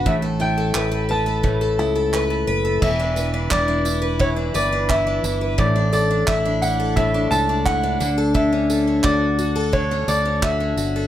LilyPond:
<<
  \new Staff \with { instrumentName = "Upright piano" } { \time 4/4 \key e \dorian \tempo 4 = 87 e''8 g''4 a''4. r4 | e''4 d''4 cis''8 d''8 e''4 | d''8 d''8 e''8 fis''8 e''8 a''8 fis''8. r16 | e''4 d''4 cis''8 d''8 e''4 | }
  \new Staff \with { instrumentName = "Twelve-string acoustic guitar" } { \time 4/4 \key e \dorian a,16 a'16 e'16 a'16 b'16 a'16 b'16 a'16 a,16 a'16 e'16 a'16 b'16 a'16 b'16 a'16 | e16 d'16 b'16 d'16 e'16 d'16 e'16 b'16 e16 d'16 b'16 d'16 e'16 d'16 e'16 b'16 | a,16 d'16 a'16 d'16 e'16 d'16 e'16 a'16 a,16 d'16 a'16 d'16 e'16 d'16 d16 a'16 | d16 cis'16 a'16 cis'16 fis'8 fis'16 a'16 d16 cis'16 a'16 cis'16 fis'16 cis'16 fis'16 a'16 | }
  \new Staff \with { instrumentName = "Fingered electric bass" } { \clef bass \time 4/4 \key e \dorian a,,4 a,,4. cis,4 fis,,8 | e,,4 e,,4. g,,4 g,,8 | a,,4 a,,4. cis,4 d,8~ | d,4 d,4. d,4 g,,8 | }
  \new DrumStaff \with { instrumentName = "Drums" } \drummode { \time 4/4 bd4 hc4 bd4 hc4 | <cymc bd>8 tamb8 <hc bd>8 tamb8 bd8 tamb8 <hc bd>8 tamb8 | bd8 tamb8 <hc bd>8 tamb8 bd8 tamb8 <hc bd>8 tamb8 | bd8 tamb8 <hc bd>8 tamb8 bd8 tamb8 <hc bd>8 tamb8 | }
>>